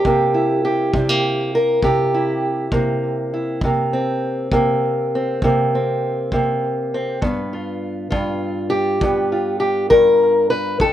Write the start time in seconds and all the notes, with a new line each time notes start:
Already playing: G4
0.05 C3 A#3, kick
0.34 E4
0.65 G4
0.94 C3 G3, kick
1.09 A#3
1.55 A#4
1.82 C3 G4, kick
2.14 E4
2.72 C3 A#3, kick
3.34 E4
3.61 C3 A#3, kick
3.93 C4
4.52 C3 A#3, kick
5.15 C4
5.42 C3 A#3, kick
5.75 C4
6.32 C3 A#3, kick
6.94 C4
7.22 G2 B3, kick
7.53 F4
8.11 G2 F4, kick
8.70 G4
9.01 G2 B3, kick
9.32 F4
9.60 G4
9.90 G2 A#4, kick
10.50 B4
10.80 F2 A4, kick